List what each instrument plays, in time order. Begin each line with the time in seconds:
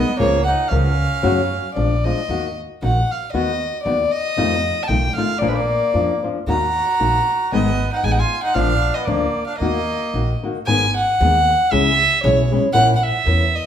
Already playing: nylon-string guitar G#3 B3 D#4 A#4, trumpet B3, violin D#5
0.17 upright bass C#2, nylon-string guitar C#3 F3 G#3 F4 A#4, trumpet A#3, violin C#5
0.45 trumpet D#4, violin F#5
0.68 upright bass C#2, nylon-string guitar F3 G#3 F4, trumpet C#4, violin F5
0.72 nylon-string guitar A#4
1.23 nylon-string guitar F#2 C#3 F#3 A#3 C#4 F#4, upright bass F#2
1.74 upright bass A#1, nylon-string guitar F3 G#3 D4 F4, violin D5
2.04 nylon-string guitar F3 G#3 D4 F4, violin D#5
2.29 upright bass D#2, nylon-string guitar D#3 A#3 D#4 F#4
2.82 upright bass A#1, nylon-string guitar D#3 A#3 D#4 F#4, violin F#5
3.11 violin F5
3.32 upright bass D#2, nylon-string guitar D#3 B3 D#4 F#4, violin D#5
3.83 upright bass D#2, nylon-string guitar D#3 B3 D#4 F#4, violin D5
4.11 violin D#5
4.37 nylon-string guitar F2 C3 D#3 A3 D#4 F4, upright bass F2
4.83 violin A5
4.87 upright bass B1, nylon-string guitar D#3 A3 D#4 F4, violin G5
5.15 nylon-string guitar D#3 A3 D#4 F4, violin F5
5.39 upright bass A#1, nylon-string guitar A#2 F3 A#3 D4 F4, trumpet A#3, violin D5
5.48 trumpet G#3, violin B4
5.55 trumpet A#3, violin D5
5.94 upright bass F2, nylon-string guitar F3 A#3 D4 F4
6.23 nylon-string guitar F3 A#3 D4 F4
6.47 upright bass D#2, nylon-string guitar D#3 A#3 D#4 F#4, trumpet F#4, violin A#5
7.00 upright bass A#1, nylon-string guitar D#3 A#3 D#4 F#4
7.52 upright bass G#1, nylon-string guitar G#2 D#3 G#3 B3 D#4 G#4, trumpet B3, violin D#5
7.92 trumpet D#4, violin F#5
8.03 upright bass A1, nylon-string guitar G#3 B3 D#4 G#4, trumpet D#4, violin G#5
8.10 trumpet D#4, violin F#5
8.19 trumpet F4, violin G#5
8.43 trumpet D#4, violin F#5
8.54 upright bass A#1, nylon-string guitar A#2 F3 A#3 D4 F4, trumpet D4, violin F5
8.94 trumpet B3, violin D#5
9.05 upright bass D2, nylon-string guitar F3 A#3 D4 F4, trumpet A#3, violin D5
9.47 trumpet D4, violin F5
9.58 upright bass D#2, nylon-string guitar D#3, trumpet A#3, violin D#5
9.62 nylon-string guitar A#3 D#4 F#4
10.14 upright bass A#1, nylon-string guitar D#3 A#3 D#4 F#4
10.43 nylon-string guitar D#3 A#3 D#4 F#4
10.66 upright bass G#1, nylon-string guitar G#2 D#3 G#3 B3 D#4 G#4, violin G#5
10.96 violin F#5
11.21 upright bass D#2, nylon-string guitar G#3 B3 D#4 G#4
11.71 upright bass C#2, nylon-string guitar C#3 G#3 C#4 E4 G#4, violin E5
12.23 upright bass B1, nylon-string guitar G#3 C#4 E4 G#4, violin C#5
12.51 nylon-string guitar G#3 C#4 E4 G#4
12.73 upright bass A#1, nylon-string guitar A#2 A#3 C#4 E4 A#4, violin F#5
12.96 violin F#5
13.03 violin E5
13.25 upright bass E2, nylon-string guitar A#3 C#4 E4 A#4
13.55 violin D#5